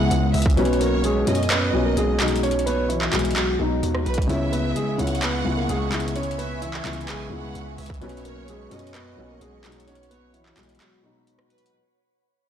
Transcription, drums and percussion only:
0.11 closed hi-hat
0.34 closed hi-hat, open hi-hat
0.42 kick, closed hi-hat
0.50 closed hi-hat
0.57 closed hi-hat
0.65 closed hi-hat
0.73 closed hi-hat
0.81 closed hi-hat
1.04 closed hi-hat
1.27 closed hi-hat
1.35 closed hi-hat
1.43 closed hi-hat
1.50 cross-stick, clap, closed hi-hat
1.97 closed hi-hat
2.20 clap, closed hi-hat
2.28 closed hi-hat
2.36 closed hi-hat
2.43 closed hi-hat
2.51 closed hi-hat
2.59 closed hi-hat
2.67 closed hi-hat
2.90 closed hi-hat
3.02 clap
3.13 clap, closed hi-hat
3.19 closed hi-hat
3.25 closed hi-hat
3.31 closed hi-hat
3.36 clap, closed hi-hat
3.83 closed hi-hat
3.95 cross-stick
4.06 closed hi-hat
4.14 kick, closed hi-hat
4.22 closed hi-hat
4.29 closed hi-hat
4.53 closed hi-hat
4.76 closed hi-hat
4.99 closed hi-hat
5.07 closed hi-hat
5.15 closed hi-hat
5.22 cross-stick, clap, closed hi-hat
5.69 closed hi-hat
5.92 clap, closed hi-hat
6.00 closed hi-hat
6.08 closed hi-hat
6.16 closed hi-hat
6.23 closed hi-hat
6.31 closed hi-hat
6.39 closed hi-hat
6.62 closed hi-hat
6.74 clap
6.85 clap, closed hi-hat
6.93 closed hi-hat
7.01 closed hi-hat
7.08 cross-stick, clap, closed hi-hat
7.55 closed hi-hat
7.78 closed hi-hat, open hi-hat
7.86 kick, closed hi-hat
7.94 closed hi-hat
8.02 closed hi-hat
8.09 closed hi-hat
8.17 closed hi-hat
8.25 closed hi-hat
8.48 closed hi-hat
8.71 closed hi-hat
8.79 closed hi-hat
8.87 closed hi-hat
8.94 cross-stick, clap, closed hi-hat
9.41 closed hi-hat
9.64 clap, closed hi-hat
9.72 closed hi-hat
9.80 closed hi-hat
9.88 closed hi-hat
9.95 closed hi-hat
10.03 closed hi-hat
10.11 closed hi-hat
10.34 closed hi-hat
10.46 clap
10.57 clap, closed hi-hat
10.63 closed hi-hat
10.69 closed hi-hat
10.75 closed hi-hat
10.80 clap, closed hi-hat
11.27 closed hi-hat
11.39 cross-stick
11.50 closed hi-hat
11.58 closed hi-hat
11.66 closed hi-hat

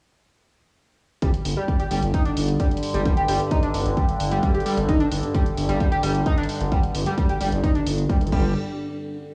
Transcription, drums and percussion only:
1.22 kick, closed hi-hat
1.34 closed hi-hat
1.45 open hi-hat
1.57 closed hi-hat
1.68 kick, closed hi-hat
1.80 closed hi-hat
1.91 open hi-hat
2.02 closed hi-hat
2.14 kick, closed hi-hat
2.25 closed hi-hat
2.37 open hi-hat
2.48 closed hi-hat
2.60 kick, closed hi-hat
2.71 closed hi-hat
2.77 closed hi-hat
2.83 open hi-hat
2.94 closed hi-hat
3.05 kick, closed hi-hat
3.17 closed hi-hat
3.28 open hi-hat
3.40 closed hi-hat
3.51 kick, closed hi-hat
3.63 closed hi-hat
3.74 open hi-hat
3.86 closed hi-hat
3.97 kick, closed hi-hat
4.09 closed hi-hat
4.20 open hi-hat
4.32 closed hi-hat
4.43 kick, closed hi-hat
4.55 closed hi-hat
4.60 closed hi-hat
4.66 open hi-hat
4.77 closed hi-hat
4.89 kick, closed hi-hat
5.00 closed hi-hat
5.12 open hi-hat
5.23 closed hi-hat
5.34 kick, closed hi-hat
5.46 closed hi-hat
5.57 open hi-hat
5.69 closed hi-hat
5.80 kick, closed hi-hat
5.92 closed hi-hat
6.03 open hi-hat
6.15 closed hi-hat
6.26 kick, closed hi-hat
6.38 closed hi-hat
6.43 closed hi-hat
6.49 open hi-hat
6.61 closed hi-hat
6.72 kick, closed hi-hat
6.83 closed hi-hat
6.95 open hi-hat
7.06 closed hi-hat
7.18 kick, closed hi-hat
7.29 closed hi-hat
7.41 open hi-hat
7.52 closed hi-hat
7.64 kick, closed hi-hat
7.75 closed hi-hat
7.86 open hi-hat
7.98 closed hi-hat
8.09 kick, closed hi-hat
8.21 closed hi-hat
8.27 closed hi-hat
8.32 kick, crash

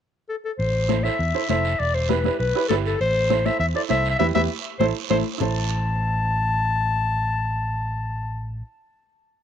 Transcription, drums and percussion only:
0.60 long guiro
0.89 high conga, short guiro
1.05 short guiro
1.20 long guiro
1.50 high conga, short guiro
1.65 short guiro
1.80 long guiro
2.10 high conga, short guiro
2.24 high conga, short guiro
2.40 long guiro
2.70 high conga, short guiro
2.85 short guiro
3.01 long guiro
3.31 high conga, short guiro
3.46 high conga, short guiro
3.61 long guiro
3.90 high conga, short guiro
4.05 short guiro
4.20 high conga, long guiro
4.35 high conga, long guiro
4.81 high conga, long guiro
5.11 high conga, long guiro
5.41 low conga, long guiro

